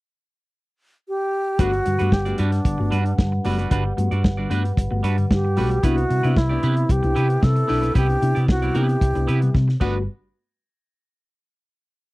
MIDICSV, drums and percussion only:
0, 0, Header, 1, 2, 480
1, 0, Start_track
1, 0, Key_signature, 1, "major"
1, 0, Tempo, 529568
1, 1439, Time_signature, 4, 2, 24, 8
1, 11002, End_track
2, 0, Start_track
2, 0, Title_t, "Drums"
2, 1441, Note_on_c, 9, 42, 80
2, 1442, Note_on_c, 9, 36, 114
2, 1532, Note_off_c, 9, 42, 0
2, 1533, Note_off_c, 9, 36, 0
2, 1570, Note_on_c, 9, 42, 36
2, 1661, Note_off_c, 9, 42, 0
2, 1682, Note_on_c, 9, 42, 64
2, 1773, Note_off_c, 9, 42, 0
2, 1807, Note_on_c, 9, 42, 48
2, 1898, Note_off_c, 9, 42, 0
2, 1921, Note_on_c, 9, 36, 103
2, 1924, Note_on_c, 9, 38, 102
2, 2012, Note_off_c, 9, 36, 0
2, 2015, Note_off_c, 9, 38, 0
2, 2046, Note_on_c, 9, 42, 38
2, 2137, Note_off_c, 9, 42, 0
2, 2157, Note_on_c, 9, 42, 62
2, 2248, Note_off_c, 9, 42, 0
2, 2287, Note_on_c, 9, 42, 50
2, 2291, Note_on_c, 9, 38, 37
2, 2378, Note_off_c, 9, 42, 0
2, 2382, Note_off_c, 9, 38, 0
2, 2402, Note_on_c, 9, 36, 114
2, 2406, Note_on_c, 9, 42, 78
2, 2493, Note_off_c, 9, 36, 0
2, 2497, Note_off_c, 9, 42, 0
2, 2647, Note_on_c, 9, 42, 61
2, 2738, Note_off_c, 9, 42, 0
2, 2770, Note_on_c, 9, 42, 43
2, 2861, Note_off_c, 9, 42, 0
2, 2886, Note_on_c, 9, 36, 108
2, 2889, Note_on_c, 9, 38, 114
2, 2977, Note_off_c, 9, 36, 0
2, 2980, Note_off_c, 9, 38, 0
2, 3123, Note_on_c, 9, 46, 70
2, 3214, Note_off_c, 9, 46, 0
2, 3255, Note_on_c, 9, 42, 48
2, 3346, Note_off_c, 9, 42, 0
2, 3363, Note_on_c, 9, 42, 81
2, 3365, Note_on_c, 9, 36, 108
2, 3454, Note_off_c, 9, 42, 0
2, 3455, Note_off_c, 9, 36, 0
2, 3609, Note_on_c, 9, 42, 67
2, 3700, Note_off_c, 9, 42, 0
2, 3731, Note_on_c, 9, 42, 43
2, 3822, Note_off_c, 9, 42, 0
2, 3846, Note_on_c, 9, 36, 107
2, 3849, Note_on_c, 9, 38, 116
2, 3936, Note_off_c, 9, 36, 0
2, 3940, Note_off_c, 9, 38, 0
2, 4087, Note_on_c, 9, 42, 58
2, 4177, Note_off_c, 9, 42, 0
2, 4217, Note_on_c, 9, 42, 45
2, 4308, Note_off_c, 9, 42, 0
2, 4327, Note_on_c, 9, 36, 115
2, 4335, Note_on_c, 9, 42, 78
2, 4418, Note_off_c, 9, 36, 0
2, 4426, Note_off_c, 9, 42, 0
2, 4569, Note_on_c, 9, 42, 66
2, 4659, Note_off_c, 9, 42, 0
2, 4695, Note_on_c, 9, 42, 37
2, 4785, Note_off_c, 9, 42, 0
2, 4810, Note_on_c, 9, 36, 98
2, 4812, Note_on_c, 9, 38, 111
2, 4900, Note_off_c, 9, 36, 0
2, 4903, Note_off_c, 9, 38, 0
2, 5047, Note_on_c, 9, 46, 67
2, 5137, Note_off_c, 9, 46, 0
2, 5179, Note_on_c, 9, 42, 49
2, 5270, Note_off_c, 9, 42, 0
2, 5288, Note_on_c, 9, 36, 106
2, 5288, Note_on_c, 9, 42, 88
2, 5378, Note_off_c, 9, 42, 0
2, 5379, Note_off_c, 9, 36, 0
2, 5418, Note_on_c, 9, 42, 35
2, 5509, Note_off_c, 9, 42, 0
2, 5533, Note_on_c, 9, 42, 66
2, 5624, Note_off_c, 9, 42, 0
2, 5658, Note_on_c, 9, 42, 39
2, 5749, Note_off_c, 9, 42, 0
2, 5769, Note_on_c, 9, 36, 108
2, 5774, Note_on_c, 9, 38, 115
2, 5860, Note_off_c, 9, 36, 0
2, 5865, Note_off_c, 9, 38, 0
2, 6009, Note_on_c, 9, 42, 57
2, 6099, Note_off_c, 9, 42, 0
2, 6135, Note_on_c, 9, 42, 43
2, 6225, Note_off_c, 9, 42, 0
2, 6248, Note_on_c, 9, 36, 109
2, 6252, Note_on_c, 9, 42, 83
2, 6339, Note_off_c, 9, 36, 0
2, 6343, Note_off_c, 9, 42, 0
2, 6376, Note_on_c, 9, 42, 33
2, 6467, Note_off_c, 9, 42, 0
2, 6492, Note_on_c, 9, 42, 56
2, 6583, Note_off_c, 9, 42, 0
2, 6615, Note_on_c, 9, 42, 43
2, 6706, Note_off_c, 9, 42, 0
2, 6731, Note_on_c, 9, 36, 106
2, 6733, Note_on_c, 9, 38, 107
2, 6822, Note_off_c, 9, 36, 0
2, 6824, Note_off_c, 9, 38, 0
2, 6855, Note_on_c, 9, 42, 35
2, 6946, Note_off_c, 9, 42, 0
2, 6970, Note_on_c, 9, 46, 72
2, 7060, Note_off_c, 9, 46, 0
2, 7102, Note_on_c, 9, 42, 47
2, 7192, Note_off_c, 9, 42, 0
2, 7208, Note_on_c, 9, 42, 76
2, 7209, Note_on_c, 9, 36, 104
2, 7299, Note_off_c, 9, 42, 0
2, 7300, Note_off_c, 9, 36, 0
2, 7340, Note_on_c, 9, 42, 34
2, 7430, Note_off_c, 9, 42, 0
2, 7454, Note_on_c, 9, 42, 65
2, 7545, Note_off_c, 9, 42, 0
2, 7579, Note_on_c, 9, 42, 44
2, 7670, Note_off_c, 9, 42, 0
2, 7690, Note_on_c, 9, 36, 100
2, 7695, Note_on_c, 9, 38, 111
2, 7781, Note_off_c, 9, 36, 0
2, 7785, Note_off_c, 9, 38, 0
2, 7817, Note_on_c, 9, 42, 35
2, 7908, Note_off_c, 9, 42, 0
2, 7929, Note_on_c, 9, 42, 55
2, 8020, Note_off_c, 9, 42, 0
2, 8060, Note_on_c, 9, 42, 47
2, 8151, Note_off_c, 9, 42, 0
2, 8170, Note_on_c, 9, 36, 104
2, 8176, Note_on_c, 9, 42, 75
2, 8260, Note_off_c, 9, 36, 0
2, 8267, Note_off_c, 9, 42, 0
2, 8298, Note_on_c, 9, 42, 37
2, 8389, Note_off_c, 9, 42, 0
2, 8416, Note_on_c, 9, 42, 61
2, 8506, Note_off_c, 9, 42, 0
2, 8538, Note_on_c, 9, 42, 45
2, 8629, Note_off_c, 9, 42, 0
2, 8652, Note_on_c, 9, 36, 106
2, 8656, Note_on_c, 9, 38, 51
2, 8743, Note_off_c, 9, 36, 0
2, 8747, Note_off_c, 9, 38, 0
2, 8782, Note_on_c, 9, 38, 49
2, 8873, Note_off_c, 9, 38, 0
2, 8889, Note_on_c, 9, 49, 92
2, 8890, Note_on_c, 9, 36, 101
2, 8980, Note_off_c, 9, 49, 0
2, 8981, Note_off_c, 9, 36, 0
2, 11002, End_track
0, 0, End_of_file